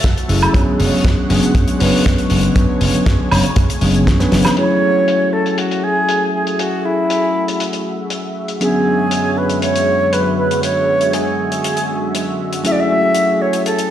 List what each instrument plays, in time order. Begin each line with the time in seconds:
Already playing: analog synth pad A3 F#4 E5 A5
0.04 slap bass F#2, kick, snare, closed hi-hat
0.18 closed hi-hat
0.29 slap bass F#1, tine electric piano F#3 A3 C#4 E4 G#4, open hi-hat
0.43 closed hi-hat, high woodblock
0.54 slap bass F#2, analog synth pad D3 G#3 C#5 F#5, tine electric piano F#3 B3 C#4 D4 G#4, kick, closed hi-hat
0.80 slap bass F#1, open hi-hat
0.93 muted slap bass stroke
1.05 slap bass F#2, kick, snare, closed hi-hat
1.29 slap bass F#1, tine electric piano F#3 B3 C#4 D4 G#4, open hi-hat
1.43 closed hi-hat
1.55 slap bass F#2, kick, closed hi-hat
1.68 closed hi-hat
1.79 slap bass F#1, tine electric piano F#3 B3 C#4 D4 B4, open hi-hat
1.94 muted slap bass stroke
2.06 slap bass F#2, kick, snare, closed hi-hat
2.18 closed hi-hat
2.30 slap bass F#1, open hi-hat
2.43 closed hi-hat
2.55 slap bass F#2, tine electric piano F#3 B3 C#4 D4 B4, analog synth pad G#5, kick, closed hi-hat
2.81 slap bass F#1, open hi-hat
2.94 muted slap bass stroke, closed hi-hat
3.06 slap bass F#2, kick, snare, closed hi-hat
3.31 slap bass F#1, tine electric piano F#3 B3 C#4 D4 C#5, snare, open hi-hat, high woodblock
3.43 closed hi-hat
3.56 slap bass F#2, kick, closed hi-hat
3.69 muted slap bass stroke, closed hi-hat
3.81 slap bass F#1, tine electric piano F#3 B3 C#4 D4 G#4, open hi-hat
3.94 closed hi-hat
4.07 slap bass F#2, kick, snare, closed hi-hat
4.20 tine electric piano F#3 B3 C#4 D4 B4, snare, closed hi-hat
4.32 slap bass F#1, snare, open hi-hat
4.45 snare, closed hi-hat, high woodblock
4.57 tine electric piano F#3 A3 C#4 E4 G#4, analog synth pad A3 F#4 G#4 E5, flute C#5, closed hi-hat
5.08 closed hi-hat
5.33 flute A4
5.46 closed hi-hat
5.58 flute F#4, closed hi-hat
5.71 closed hi-hat
5.84 flute G#4
6.09 closed hi-hat
6.34 flute G#4
6.47 closed hi-hat
6.59 flute F#4, closed hi-hat
6.85 flute E4
7.10 closed hi-hat
7.48 closed hi-hat
7.60 closed hi-hat
7.73 closed hi-hat
8.10 closed hi-hat
8.48 closed hi-hat
8.61 analog synth pad F#2 D3 G#3 C#5, tine electric piano F#3 B3 C#4 D4 G#4, flute G#4, closed hi-hat
9.11 closed hi-hat
9.38 flute B4
9.49 closed hi-hat
9.62 flute C#5, closed hi-hat
9.76 closed hi-hat
10.13 flute B4, closed hi-hat
10.38 flute B4
10.51 closed hi-hat
10.63 flute C#5, analog synth pad C#6, closed hi-hat
11.01 closed hi-hat
11.13 flute G#4, closed hi-hat
11.52 closed hi-hat
11.64 closed hi-hat
11.77 closed hi-hat
12.15 closed hi-hat
12.53 closed hi-hat
12.64 tine electric piano F#3 A3 C#4 E4 G#4, analog synth pad A3 G#4, flute E5, closed hi-hat
12.72 flute D5
12.80 flute E5
13.15 closed hi-hat
13.42 flute C#5
13.53 closed hi-hat
13.66 flute A4, closed hi-hat
13.79 closed hi-hat